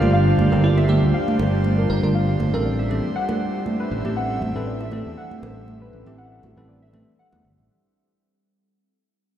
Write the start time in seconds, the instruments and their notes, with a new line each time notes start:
Already playing: ambient pad G3 A#3 D4 F4, analog synth pad D4 G4 C5 F5
0.01 fingered electric bass G1, tine electric piano D3 G3 A#3 F4, high conga
0.13 synth pluck F5
0.27 synth pluck F5
0.38 fingered electric bass G1, synth pluck F4, high conga
0.52 fingered electric bass G1, tine electric piano D3 G3 A#3 G4, synth pluck A#4
0.64 fm electric piano F4, synth pluck D5
0.77 synth pluck E5, high bongo
0.88 tine electric piano D3 G3 A#3 G4, fm electric piano G4, high bongo, high conga
1.03 fingered electric bass D2
1.14 synth pluck F5
1.28 synth pluck F5, high conga
1.39 fingered electric bass G1, high bongo
1.64 high conga
1.78 synth pluck A#4
1.90 fingered electric bass G1, fm electric piano A#4
2.03 fingered electric bass G1, tine electric piano D3 G3 A#3 F4, fm electric piano A#4, high conga
2.15 synth pluck F5
2.29 synth pluck F5
2.40 fingered electric bass G1, synth pluck F4, high bongo, high conga
2.53 fingered electric bass A1, tine electric piano E3 A3 C4 A4, fm electric piano A#4, synth pluck A#4
2.65 ambient pad C4 E4 A4, synth pluck D5
2.79 synth pluck E5
2.90 tine electric piano E3 A3 C4 A4, high conga, low conga
3.16 analog synth pad E5, synth pluck F#5
3.29 synth pluck F#5, high bongo, high conga
3.66 high conga
3.80 synth pluck B4
3.91 fingered electric bass A1
4.04 fingered electric bass A1, tine electric piano E3 A3 C4 G4, high conga
4.17 synth pluck F#5
4.30 synth pluck F#5
4.42 fingered electric bass A1, synth pluck F#4, high conga
4.55 fingered electric bass A1, tine electric piano E3 A3 C4 A4, synth pluck B4
4.67 synth pluck D5
4.80 synth pluck E5, high bongo
4.91 tine electric piano E3 A3 C4 A4, high bongo, high conga
5.06 fingered electric bass E2
5.17 synth pluck F#5
5.31 synth pluck F#5, high conga
5.43 fingered electric bass A1, high bongo
5.68 high conga
5.82 synth pluck B4
5.93 fingered electric bass A1
6.06 fingered electric bass A1, tine electric piano E3 A3 C4 G4, high conga
6.18 synth pluck F#5
6.32 synth pluck F#5
6.43 fingered electric bass A1, synth pluck F#4, high bongo, high conga
6.57 fingered electric bass A1, tine electric piano E3 A3 C4 A4, synth pluck B4
6.69 synth pluck D5
6.82 synth pluck E5
6.93 tine electric piano E3 A3 C4 A4, high conga, low conga
7.19 synth pluck F#5
7.33 fingered electric bass E2, synth pluck F#5, high bongo, high conga
7.44 fingered electric bass G1
7.58 fingered electric bass A1